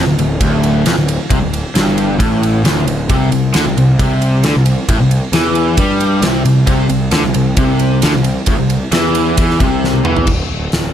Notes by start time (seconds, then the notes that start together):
0.07 D1 D2
0.18 D1 D2, ride
0.40 D1 D2, kick, ride
0.63 ride
0.86 F1 F2, snare, ride
0.96 D1 D2
1.08 ride
1.30 C2 C3, kick, ride
1.41 D1 D2
1.53 ride
1.75 G1 G2, snare, ride
1.98 ride
2.19 A1 A2, kick, ride
2.43 ride
2.64 D1 D2, snare, ride
2.87 D1 D2, ride
3.09 C2 C3, kick, ride
3.32 C2 C3, ride
3.54 D2 D3, snare, ride
3.65 C2 C3
3.77 C2 C3, ride
3.99 C2 C3, kick, ride
4.22 ride
4.43 D2 D3, snare, ride
4.55 C2 C3
4.66 ride
4.88 A1 A2, kick, ride
4.99 C2 C3
5.11 ride
5.32 E2 E3, snare, ride
5.55 ride
5.77 G2 G3, kick, ride
6.00 ride
6.21 C2 C3, snare, ride
6.45 C2 C3, ride
6.67 C2 C3, kick, ride
6.89 C2 C3, ride
7.11 D2 D3, snare, ride
7.23 C2 C3
7.34 C2 C3, ride
7.57 C2 C3, kick, ride
7.79 ride
8.02 D2 D3, snare, ride
8.14 C2 C3
8.24 ride
8.46 A1 A2, kick, ride
8.59 C2 C3
8.70 ride
8.92 E2 E3, snare, ride
9.15 ride
9.37 E2 E3, kick, ride
9.50 snare
9.59 C2 C3, kick, ride
9.84 snare
9.93 high tom
10.04 E2 E3, mid tom
10.17 floor tom
10.27 D1, kick, crash
10.52 D1
10.72 D1, snare, open hi-hat